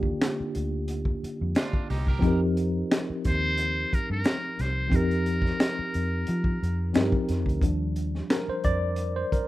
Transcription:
Already playing: D#2 D3 A#3 D4 F4 G4
0.03 kick
0.22 finger snap, snare, closed hi-hat
0.40 muted fingered electric bass stroke
0.55 D2, closed hi-hat
0.88 closed hi-hat
1.05 kick
1.24 muted fingered electric bass stroke, closed hi-hat
1.41 F2
1.55 D4 F4, finger snap, snare, closed hi-hat
1.73 kick
1.90 C2 D#4 G4, snare, open hi-hat
2.07 G4 A#4, kick
2.19 F3 C4, kick
2.23 F2 D#4 G4 A#4, closed hi-hat
2.57 closed hi-hat
2.92 finger snap, snare, closed hi-hat
3.10 muted fingered electric bass stroke
3.25 D#2 C5, kick, snare, closed hi-hat
3.57 closed hi-hat
3.93 A#4, muted fingered electric bass stroke, kick, closed hi-hat
4.10 G2 A#4
4.24 finger snap, snare, closed hi-hat
4.59 C2 C5, snare, closed hi-hat
4.88 F3 C4, kick
4.92 F2 D#4 G4 A#4, closed hi-hat
5.11 closed hi-hat
5.26 closed hi-hat
5.42 kick, snare
5.60 finger snap, snare, closed hi-hat
5.79 muted fingered electric bass stroke
5.94 F2, closed hi-hat
6.27 F3, closed hi-hat
6.44 kick
6.63 F2, closed hi-hat
6.93 G2 F3 C4 D#4 G4, finger snap, snare, closed hi-hat
6.97 A#4
7.12 kick
7.29 F2, snare, closed hi-hat
7.46 D2, kick, closed hi-hat
7.61 D#2 F3 G3 D4, kick, closed hi-hat
7.96 closed hi-hat
8.15 snare
8.30 A#4, finger snap, snare, closed hi-hat
8.48 C5, muted fingered electric bass stroke
8.64 F2 D5, kick, closed hi-hat
8.96 closed hi-hat
9.16 C5
9.32 A#4, muted fingered electric bass stroke, kick, closed hi-hat

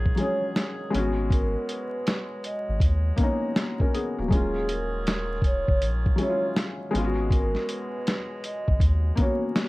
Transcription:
Already playing: A#1 D#3 F#3 G#3 C#4 F4 G#4
0.06 kick
0.16 F#3 G#3, closed hi-hat
0.20 C#4 G#4 C#5
0.56 snare, closed hi-hat
0.90 G#1 B2 G#3 B3
0.95 C#4 F#4, closed hi-hat
1.30 A#4, kick, closed hi-hat
1.69 B4, closed hi-hat
2.07 snare, closed hi-hat
2.44 D#5, closed hi-hat
2.69 G#1
2.80 D#2, kick, closed hi-hat
3.16 A#3 B3, kick, closed hi-hat
3.21 C#4 D#4 C#5
3.56 snare, closed hi-hat
3.80 C#4 A#4, kick
3.94 B3 G#4, closed hi-hat
4.18 D1 A#3 F#4
4.28 D#1 D#3 F#3 G#3 C#4 F4 G#4, kick
4.32 C#4 F4 G#4, closed hi-hat
4.69 A#4, closed hi-hat
5.07 snare, closed hi-hat
5.42 kick, closed hi-hat
5.46 C#5
5.68 F#1, kick
5.82 A#1, closed hi-hat
6.06 kick
6.16 F#3 G#3, closed hi-hat
6.20 C#4 E4 C#5
6.29 F4
6.56 snare, closed hi-hat
6.91 G#1 B2 G#3 B3
6.95 C#4 F4, closed hi-hat
7.04 F#4
7.31 A#4, kick, closed hi-hat
7.55 snare
7.69 B4, closed hi-hat
8.07 snare, closed hi-hat
8.44 D#5, closed hi-hat
8.68 G#1, kick
8.80 D#2, kick, closed hi-hat
9.15 A#3 B3, kick, closed hi-hat
9.20 C#4 F#4 C#5
9.56 snare, closed hi-hat

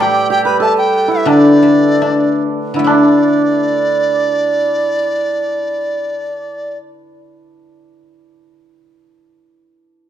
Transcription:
Already playing: A2 G3 A4 B4 D5
0.00 G4 G5, high woodblock
0.30 G4 G5
0.45 B4 B5
0.60 A4 A5, high woodblock, low woodblock
0.78 G5
1.08 E4 E5
1.25 D3 D4 D5, high woodblock
1.63 A3
2.02 D4, high woodblock, low woodblock
2.74 D3 E4
2.79 A3
2.84 D4 D5, high woodblock

